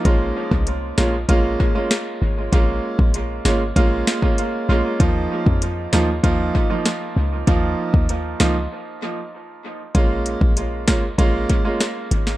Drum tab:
HH |x---x---x---x---|x---x---x---x---|x---x---x---x---|x---x-----------|
SD |------o-----o---|------o---o-----|------o-----o---|------o---------|
BD |o--o----o-o-----|o--o----o--o----|o--o----o-o-----|o--o------------|

HH |x-x-x-x-x-x-x-x-|
SD |------o-----o--o|
BD |o--o--o-o-o-----|